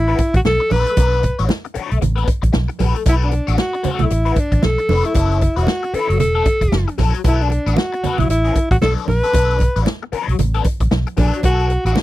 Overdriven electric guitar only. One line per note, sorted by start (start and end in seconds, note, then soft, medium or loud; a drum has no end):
0.08 0.18 A3 medium
0.08 0.18 D4 medium
0.08 0.19 F#4 medium
0.08 0.19 B4 medium
0.19 muted overdriven electric guitar stroke soft
0.35 muted overdriven electric guitar stroke soft
0.45 muted overdriven electric guitar stroke soft
0.60 muted overdriven electric guitar stroke soft
0.70 0.93 A3 medium
0.70 0.87 D4 medium
0.70 0.86 F#4 medium
0.70 0.86 B4 medium
0.87 muted overdriven electric guitar stroke soft
0.97 1.19 A3 medium
0.97 1.20 D4 medium
0.97 1.20 F#4 medium
0.97 1.20 B4 medium
1.23 muted overdriven electric guitar stroke soft
1.39 1.48 A3 medium
1.39 1.49 D4 medium
1.39 1.49 F#4 medium
1.39 1.50 C#5 medium
1.49 muted overdriven electric guitar stroke soft
1.65 muted overdriven electric guitar stroke soft
1.74 1.97 A3 medium
1.74 1.90 D4 medium
1.74 1.90 F#4 medium
1.74 1.90 C#5 medium
1.90 muted overdriven electric guitar stroke soft
2.01 muted overdriven electric guitar stroke soft
2.16 2.26 A3 medium
2.16 2.26 D4 medium
2.16 2.27 F#4 medium
2.16 2.27 B4 medium
2.27 muted overdriven electric guitar stroke soft
2.42 muted overdriven electric guitar stroke soft
2.53 muted overdriven electric guitar stroke soft
2.68 muted overdriven electric guitar stroke soft
2.79 3.02 A3 medium
2.79 2.95 D4 medium
2.79 2.95 F#4 medium
2.79 2.94 B4 medium
2.95 muted overdriven electric guitar stroke soft
3.06 3.28 A3 medium
3.06 3.29 D4 medium
3.06 3.29 F#4 medium
3.06 3.30 B4 medium
3.32 muted overdriven electric guitar stroke soft
3.47 3.57 A3 medium
3.47 3.57 D4 medium
3.47 3.58 F#4 medium
3.47 3.59 C#5 medium
3.58 muted overdriven electric guitar stroke soft
3.73 muted overdriven electric guitar stroke soft
3.83 4.06 A3 medium
3.83 4.00 D4 medium
3.83 3.99 F#4 medium
3.83 3.99 C#5 medium
4.00 muted overdriven electric guitar stroke soft
4.10 muted overdriven electric guitar stroke soft
4.25 4.35 A3 medium
4.25 4.36 D4 medium
4.25 4.36 F#4 medium
4.25 4.36 B4 medium
4.36 muted overdriven electric guitar stroke soft
4.52 muted overdriven electric guitar stroke soft
4.63 muted overdriven electric guitar stroke soft
4.78 muted overdriven electric guitar stroke soft
4.89 5.11 A3 medium
4.89 5.05 D4 medium
4.89 5.04 F#4 medium
4.89 5.03 B4 medium
5.05 muted overdriven electric guitar stroke soft
5.15 5.37 F#3 medium
5.15 5.38 C#4 medium
5.15 5.38 E4 medium
5.15 5.38 A4 medium
5.41 muted overdriven electric guitar stroke soft
5.56 5.66 F#3 medium
5.56 5.66 C#4 medium
5.56 5.67 E4 medium
5.56 5.68 B4 medium
5.67 muted overdriven electric guitar stroke soft
5.83 muted overdriven electric guitar stroke soft
5.94 6.16 F#3 medium
5.94 6.09 C#4 medium
5.94 6.08 E4 medium
5.94 6.08 B4 medium
6.09 muted overdriven electric guitar stroke soft
6.19 muted overdriven electric guitar stroke soft
6.35 6.44 F#3 medium
6.35 6.45 C#4 medium
6.35 6.46 E4 medium
6.35 6.46 A4 medium
6.45 muted overdriven electric guitar stroke soft
6.61 muted overdriven electric guitar stroke soft
6.72 muted overdriven electric guitar stroke soft
6.88 muted overdriven electric guitar stroke soft
6.98 7.20 F#3 medium
6.98 7.15 C#4 medium
6.98 7.14 E4 medium
6.98 7.13 A4 medium
7.14 muted overdriven electric guitar stroke soft
7.24 7.47 F#3 medium
7.24 7.47 B3 medium
7.24 7.47 D4 medium
7.24 7.48 A4 medium
7.51 muted overdriven electric guitar stroke soft
7.67 7.76 F#3 soft
7.67 7.76 B3 soft
7.67 7.77 D4 medium
7.67 7.78 B4 medium
7.77 muted overdriven electric guitar stroke soft
7.92 muted overdriven electric guitar stroke soft
8.04 8.26 F#3 medium
8.04 8.19 B3 medium
8.04 8.18 D4 medium
8.04 8.18 B4 medium
8.19 muted overdriven electric guitar stroke medium
8.30 muted overdriven electric guitar stroke soft
8.45 8.55 F#3 medium
8.45 8.55 B3 medium
8.45 8.56 D4 medium
8.45 8.57 A4 medium
8.56 muted overdriven electric guitar stroke soft
8.71 muted overdriven electric guitar stroke soft
8.82 9.04 F#3 medium
8.82 9.05 B3 medium
8.82 9.05 D4 medium
8.82 9.05 A4 medium
9.08 muted overdriven electric guitar stroke soft
9.24 9.33 F#3 medium
9.24 9.34 B3 soft
9.24 9.35 D4 medium
9.24 9.35 A4 medium
9.34 9.56 F#3 medium
9.34 9.57 B3 medium
9.34 9.57 D4 medium
9.34 9.57 A4 medium
9.61 muted overdriven electric guitar stroke soft
9.76 9.85 F#3 soft
9.76 9.86 B3 medium
9.76 9.86 D4 medium
9.76 9.88 B4 medium
9.87 muted overdriven electric guitar stroke soft
10.03 muted overdriven electric guitar stroke soft
10.12 10.35 F#3 medium
10.12 10.28 B3 medium
10.12 10.27 D4 medium
10.12 10.28 B4 medium
10.28 muted overdriven electric guitar stroke medium
10.39 muted overdriven electric guitar stroke soft
10.54 10.64 F#3 medium
10.54 10.65 B3 medium
10.54 10.65 D4 medium
10.54 10.65 A4 medium
10.65 muted overdriven electric guitar stroke soft
10.81 muted overdriven electric guitar stroke soft
10.91 muted overdriven electric guitar stroke soft
11.07 muted overdriven electric guitar stroke soft
11.17 11.39 F#3 medium
11.17 11.34 B3 medium
11.17 11.33 D4 medium
11.17 11.32 A4 loud
11.33 muted overdriven electric guitar stroke soft
11.44 11.66 F#3 medium
11.44 11.66 B3 medium
11.44 11.67 D4 medium
11.44 11.67 A4 medium
11.71 muted overdriven electric guitar stroke soft
11.86 11.96 F#3 medium
11.86 11.96 B3 medium
11.86 11.97 D4 medium
11.86 11.98 B4 medium
11.97 muted overdriven electric guitar stroke soft